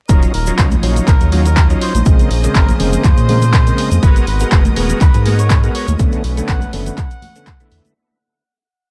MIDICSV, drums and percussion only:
0, 0, Header, 1, 2, 480
1, 0, Start_track
1, 0, Key_signature, -6, "minor"
1, 0, Tempo, 491803
1, 91, Time_signature, 4, 2, 24, 8
1, 8690, End_track
2, 0, Start_track
2, 0, Title_t, "Drums"
2, 88, Note_on_c, 9, 82, 72
2, 90, Note_on_c, 9, 36, 119
2, 90, Note_on_c, 9, 42, 69
2, 185, Note_off_c, 9, 82, 0
2, 188, Note_off_c, 9, 36, 0
2, 188, Note_off_c, 9, 42, 0
2, 218, Note_on_c, 9, 82, 40
2, 220, Note_on_c, 9, 42, 40
2, 316, Note_off_c, 9, 82, 0
2, 318, Note_off_c, 9, 42, 0
2, 330, Note_on_c, 9, 46, 108
2, 428, Note_off_c, 9, 46, 0
2, 451, Note_on_c, 9, 82, 89
2, 461, Note_on_c, 9, 42, 57
2, 549, Note_off_c, 9, 82, 0
2, 558, Note_off_c, 9, 42, 0
2, 570, Note_on_c, 9, 36, 105
2, 570, Note_on_c, 9, 42, 68
2, 572, Note_on_c, 9, 39, 118
2, 573, Note_on_c, 9, 82, 67
2, 668, Note_off_c, 9, 36, 0
2, 668, Note_off_c, 9, 42, 0
2, 669, Note_off_c, 9, 39, 0
2, 671, Note_off_c, 9, 82, 0
2, 695, Note_on_c, 9, 82, 40
2, 697, Note_on_c, 9, 63, 90
2, 701, Note_on_c, 9, 42, 38
2, 706, Note_on_c, 9, 64, 99
2, 793, Note_off_c, 9, 82, 0
2, 795, Note_off_c, 9, 63, 0
2, 799, Note_off_c, 9, 42, 0
2, 803, Note_off_c, 9, 64, 0
2, 810, Note_on_c, 9, 46, 104
2, 908, Note_off_c, 9, 46, 0
2, 940, Note_on_c, 9, 42, 57
2, 941, Note_on_c, 9, 64, 83
2, 945, Note_on_c, 9, 82, 87
2, 1038, Note_off_c, 9, 42, 0
2, 1039, Note_off_c, 9, 64, 0
2, 1043, Note_off_c, 9, 82, 0
2, 1050, Note_on_c, 9, 36, 118
2, 1051, Note_on_c, 9, 42, 70
2, 1052, Note_on_c, 9, 39, 65
2, 1052, Note_on_c, 9, 82, 67
2, 1148, Note_off_c, 9, 36, 0
2, 1148, Note_off_c, 9, 42, 0
2, 1149, Note_off_c, 9, 82, 0
2, 1150, Note_off_c, 9, 39, 0
2, 1177, Note_on_c, 9, 82, 38
2, 1180, Note_on_c, 9, 42, 39
2, 1187, Note_on_c, 9, 64, 89
2, 1274, Note_off_c, 9, 82, 0
2, 1278, Note_off_c, 9, 42, 0
2, 1285, Note_off_c, 9, 64, 0
2, 1290, Note_on_c, 9, 63, 79
2, 1291, Note_on_c, 9, 46, 108
2, 1387, Note_off_c, 9, 63, 0
2, 1388, Note_off_c, 9, 46, 0
2, 1421, Note_on_c, 9, 42, 55
2, 1422, Note_on_c, 9, 82, 77
2, 1519, Note_off_c, 9, 42, 0
2, 1520, Note_off_c, 9, 82, 0
2, 1530, Note_on_c, 9, 36, 105
2, 1531, Note_on_c, 9, 42, 70
2, 1532, Note_on_c, 9, 39, 121
2, 1536, Note_on_c, 9, 82, 58
2, 1628, Note_off_c, 9, 36, 0
2, 1628, Note_off_c, 9, 42, 0
2, 1630, Note_off_c, 9, 39, 0
2, 1634, Note_off_c, 9, 82, 0
2, 1660, Note_on_c, 9, 82, 38
2, 1661, Note_on_c, 9, 42, 39
2, 1757, Note_off_c, 9, 82, 0
2, 1759, Note_off_c, 9, 42, 0
2, 1771, Note_on_c, 9, 46, 107
2, 1869, Note_off_c, 9, 46, 0
2, 1901, Note_on_c, 9, 42, 56
2, 1903, Note_on_c, 9, 63, 84
2, 1905, Note_on_c, 9, 82, 79
2, 1998, Note_off_c, 9, 42, 0
2, 2001, Note_off_c, 9, 63, 0
2, 2003, Note_off_c, 9, 82, 0
2, 2006, Note_on_c, 9, 82, 64
2, 2010, Note_on_c, 9, 36, 127
2, 2011, Note_on_c, 9, 42, 65
2, 2103, Note_off_c, 9, 82, 0
2, 2108, Note_off_c, 9, 36, 0
2, 2108, Note_off_c, 9, 42, 0
2, 2141, Note_on_c, 9, 42, 39
2, 2144, Note_on_c, 9, 82, 38
2, 2239, Note_off_c, 9, 42, 0
2, 2241, Note_off_c, 9, 82, 0
2, 2251, Note_on_c, 9, 46, 112
2, 2348, Note_off_c, 9, 46, 0
2, 2379, Note_on_c, 9, 82, 86
2, 2381, Note_on_c, 9, 42, 56
2, 2477, Note_off_c, 9, 82, 0
2, 2479, Note_off_c, 9, 42, 0
2, 2488, Note_on_c, 9, 82, 64
2, 2490, Note_on_c, 9, 36, 114
2, 2491, Note_on_c, 9, 42, 63
2, 2493, Note_on_c, 9, 39, 122
2, 2586, Note_off_c, 9, 82, 0
2, 2588, Note_off_c, 9, 36, 0
2, 2589, Note_off_c, 9, 42, 0
2, 2590, Note_off_c, 9, 39, 0
2, 2621, Note_on_c, 9, 42, 39
2, 2624, Note_on_c, 9, 63, 86
2, 2625, Note_on_c, 9, 64, 99
2, 2630, Note_on_c, 9, 82, 43
2, 2719, Note_off_c, 9, 42, 0
2, 2721, Note_off_c, 9, 63, 0
2, 2722, Note_off_c, 9, 64, 0
2, 2728, Note_off_c, 9, 82, 0
2, 2731, Note_on_c, 9, 46, 109
2, 2829, Note_off_c, 9, 46, 0
2, 2859, Note_on_c, 9, 82, 87
2, 2861, Note_on_c, 9, 42, 54
2, 2862, Note_on_c, 9, 64, 92
2, 2957, Note_off_c, 9, 82, 0
2, 2959, Note_off_c, 9, 42, 0
2, 2960, Note_off_c, 9, 64, 0
2, 2970, Note_on_c, 9, 36, 125
2, 2971, Note_on_c, 9, 42, 69
2, 2971, Note_on_c, 9, 82, 69
2, 2972, Note_on_c, 9, 39, 65
2, 3068, Note_off_c, 9, 36, 0
2, 3068, Note_off_c, 9, 82, 0
2, 3069, Note_off_c, 9, 42, 0
2, 3070, Note_off_c, 9, 39, 0
2, 3099, Note_on_c, 9, 82, 42
2, 3101, Note_on_c, 9, 42, 38
2, 3197, Note_off_c, 9, 82, 0
2, 3199, Note_off_c, 9, 42, 0
2, 3205, Note_on_c, 9, 64, 87
2, 3209, Note_on_c, 9, 63, 82
2, 3210, Note_on_c, 9, 46, 109
2, 3302, Note_off_c, 9, 64, 0
2, 3307, Note_off_c, 9, 63, 0
2, 3308, Note_off_c, 9, 46, 0
2, 3338, Note_on_c, 9, 82, 74
2, 3340, Note_on_c, 9, 42, 55
2, 3435, Note_off_c, 9, 82, 0
2, 3438, Note_off_c, 9, 42, 0
2, 3450, Note_on_c, 9, 36, 109
2, 3450, Note_on_c, 9, 42, 68
2, 3452, Note_on_c, 9, 39, 126
2, 3454, Note_on_c, 9, 82, 69
2, 3548, Note_off_c, 9, 36, 0
2, 3548, Note_off_c, 9, 42, 0
2, 3549, Note_off_c, 9, 39, 0
2, 3551, Note_off_c, 9, 82, 0
2, 3580, Note_on_c, 9, 42, 39
2, 3581, Note_on_c, 9, 82, 44
2, 3678, Note_off_c, 9, 42, 0
2, 3679, Note_off_c, 9, 82, 0
2, 3690, Note_on_c, 9, 46, 111
2, 3788, Note_off_c, 9, 46, 0
2, 3818, Note_on_c, 9, 63, 91
2, 3821, Note_on_c, 9, 42, 54
2, 3821, Note_on_c, 9, 82, 88
2, 3916, Note_off_c, 9, 63, 0
2, 3918, Note_off_c, 9, 42, 0
2, 3918, Note_off_c, 9, 82, 0
2, 3930, Note_on_c, 9, 36, 127
2, 3930, Note_on_c, 9, 42, 64
2, 3935, Note_on_c, 9, 82, 63
2, 4028, Note_off_c, 9, 36, 0
2, 4028, Note_off_c, 9, 42, 0
2, 4033, Note_off_c, 9, 82, 0
2, 4060, Note_on_c, 9, 42, 37
2, 4063, Note_on_c, 9, 82, 46
2, 4158, Note_off_c, 9, 42, 0
2, 4161, Note_off_c, 9, 82, 0
2, 4169, Note_on_c, 9, 46, 117
2, 4267, Note_off_c, 9, 46, 0
2, 4291, Note_on_c, 9, 82, 88
2, 4300, Note_on_c, 9, 42, 52
2, 4389, Note_off_c, 9, 82, 0
2, 4398, Note_off_c, 9, 42, 0
2, 4410, Note_on_c, 9, 36, 114
2, 4410, Note_on_c, 9, 42, 62
2, 4411, Note_on_c, 9, 39, 119
2, 4413, Note_on_c, 9, 82, 66
2, 4507, Note_off_c, 9, 42, 0
2, 4508, Note_off_c, 9, 36, 0
2, 4509, Note_off_c, 9, 39, 0
2, 4511, Note_off_c, 9, 82, 0
2, 4535, Note_on_c, 9, 63, 99
2, 4540, Note_on_c, 9, 42, 37
2, 4543, Note_on_c, 9, 82, 45
2, 4545, Note_on_c, 9, 64, 97
2, 4632, Note_off_c, 9, 63, 0
2, 4638, Note_off_c, 9, 42, 0
2, 4640, Note_off_c, 9, 82, 0
2, 4643, Note_off_c, 9, 64, 0
2, 4650, Note_on_c, 9, 46, 115
2, 4748, Note_off_c, 9, 46, 0
2, 4776, Note_on_c, 9, 64, 79
2, 4777, Note_on_c, 9, 82, 87
2, 4780, Note_on_c, 9, 42, 54
2, 4873, Note_off_c, 9, 64, 0
2, 4874, Note_off_c, 9, 82, 0
2, 4878, Note_off_c, 9, 42, 0
2, 4890, Note_on_c, 9, 36, 127
2, 4890, Note_on_c, 9, 42, 68
2, 4891, Note_on_c, 9, 39, 66
2, 4895, Note_on_c, 9, 82, 66
2, 4988, Note_off_c, 9, 36, 0
2, 4988, Note_off_c, 9, 42, 0
2, 4989, Note_off_c, 9, 39, 0
2, 4993, Note_off_c, 9, 82, 0
2, 5018, Note_on_c, 9, 82, 39
2, 5020, Note_on_c, 9, 42, 37
2, 5025, Note_on_c, 9, 64, 83
2, 5116, Note_off_c, 9, 82, 0
2, 5118, Note_off_c, 9, 42, 0
2, 5122, Note_off_c, 9, 64, 0
2, 5130, Note_on_c, 9, 46, 117
2, 5132, Note_on_c, 9, 63, 83
2, 5227, Note_off_c, 9, 46, 0
2, 5230, Note_off_c, 9, 63, 0
2, 5260, Note_on_c, 9, 42, 51
2, 5261, Note_on_c, 9, 82, 80
2, 5358, Note_off_c, 9, 42, 0
2, 5359, Note_off_c, 9, 82, 0
2, 5368, Note_on_c, 9, 82, 75
2, 5370, Note_on_c, 9, 36, 111
2, 5370, Note_on_c, 9, 42, 66
2, 5371, Note_on_c, 9, 39, 123
2, 5466, Note_off_c, 9, 82, 0
2, 5468, Note_off_c, 9, 36, 0
2, 5468, Note_off_c, 9, 42, 0
2, 5469, Note_off_c, 9, 39, 0
2, 5500, Note_on_c, 9, 42, 36
2, 5500, Note_on_c, 9, 82, 42
2, 5598, Note_off_c, 9, 42, 0
2, 5598, Note_off_c, 9, 82, 0
2, 5610, Note_on_c, 9, 46, 113
2, 5708, Note_off_c, 9, 46, 0
2, 5737, Note_on_c, 9, 82, 78
2, 5741, Note_on_c, 9, 42, 52
2, 5742, Note_on_c, 9, 63, 92
2, 5835, Note_off_c, 9, 82, 0
2, 5838, Note_off_c, 9, 42, 0
2, 5840, Note_off_c, 9, 63, 0
2, 5848, Note_on_c, 9, 82, 70
2, 5850, Note_on_c, 9, 36, 126
2, 5850, Note_on_c, 9, 42, 63
2, 5946, Note_off_c, 9, 82, 0
2, 5948, Note_off_c, 9, 36, 0
2, 5948, Note_off_c, 9, 42, 0
2, 5974, Note_on_c, 9, 82, 40
2, 5981, Note_on_c, 9, 42, 36
2, 6072, Note_off_c, 9, 82, 0
2, 6078, Note_off_c, 9, 42, 0
2, 6090, Note_on_c, 9, 46, 117
2, 6188, Note_off_c, 9, 46, 0
2, 6221, Note_on_c, 9, 42, 51
2, 6225, Note_on_c, 9, 82, 79
2, 6318, Note_off_c, 9, 42, 0
2, 6322, Note_off_c, 9, 82, 0
2, 6330, Note_on_c, 9, 36, 115
2, 6330, Note_on_c, 9, 42, 63
2, 6330, Note_on_c, 9, 82, 63
2, 6332, Note_on_c, 9, 39, 120
2, 6428, Note_off_c, 9, 36, 0
2, 6428, Note_off_c, 9, 42, 0
2, 6428, Note_off_c, 9, 82, 0
2, 6429, Note_off_c, 9, 39, 0
2, 6449, Note_on_c, 9, 63, 92
2, 6457, Note_on_c, 9, 64, 86
2, 6458, Note_on_c, 9, 82, 41
2, 6461, Note_on_c, 9, 42, 36
2, 6546, Note_off_c, 9, 63, 0
2, 6555, Note_off_c, 9, 64, 0
2, 6555, Note_off_c, 9, 82, 0
2, 6558, Note_off_c, 9, 42, 0
2, 6570, Note_on_c, 9, 46, 111
2, 6667, Note_off_c, 9, 46, 0
2, 6699, Note_on_c, 9, 64, 86
2, 6700, Note_on_c, 9, 42, 52
2, 6700, Note_on_c, 9, 82, 88
2, 6797, Note_off_c, 9, 64, 0
2, 6798, Note_off_c, 9, 42, 0
2, 6798, Note_off_c, 9, 82, 0
2, 6810, Note_on_c, 9, 36, 125
2, 6810, Note_on_c, 9, 42, 68
2, 6811, Note_on_c, 9, 39, 62
2, 6812, Note_on_c, 9, 82, 73
2, 6907, Note_off_c, 9, 42, 0
2, 6908, Note_off_c, 9, 36, 0
2, 6909, Note_off_c, 9, 39, 0
2, 6910, Note_off_c, 9, 82, 0
2, 6939, Note_on_c, 9, 82, 37
2, 6940, Note_on_c, 9, 42, 36
2, 7036, Note_off_c, 9, 82, 0
2, 7038, Note_off_c, 9, 42, 0
2, 7049, Note_on_c, 9, 63, 81
2, 7049, Note_on_c, 9, 64, 83
2, 7050, Note_on_c, 9, 46, 114
2, 7146, Note_off_c, 9, 63, 0
2, 7147, Note_off_c, 9, 46, 0
2, 7147, Note_off_c, 9, 64, 0
2, 7180, Note_on_c, 9, 42, 51
2, 7180, Note_on_c, 9, 82, 86
2, 7278, Note_off_c, 9, 42, 0
2, 7278, Note_off_c, 9, 82, 0
2, 7286, Note_on_c, 9, 82, 65
2, 7290, Note_on_c, 9, 36, 110
2, 7290, Note_on_c, 9, 42, 62
2, 7291, Note_on_c, 9, 39, 116
2, 7384, Note_off_c, 9, 82, 0
2, 7387, Note_off_c, 9, 42, 0
2, 7388, Note_off_c, 9, 36, 0
2, 7389, Note_off_c, 9, 39, 0
2, 7419, Note_on_c, 9, 82, 43
2, 7420, Note_on_c, 9, 42, 36
2, 7517, Note_off_c, 9, 82, 0
2, 7518, Note_off_c, 9, 42, 0
2, 7530, Note_on_c, 9, 46, 114
2, 7628, Note_off_c, 9, 46, 0
2, 7660, Note_on_c, 9, 42, 52
2, 7667, Note_on_c, 9, 82, 90
2, 7668, Note_on_c, 9, 63, 86
2, 7758, Note_off_c, 9, 42, 0
2, 7765, Note_off_c, 9, 82, 0
2, 7766, Note_off_c, 9, 63, 0
2, 8690, End_track
0, 0, End_of_file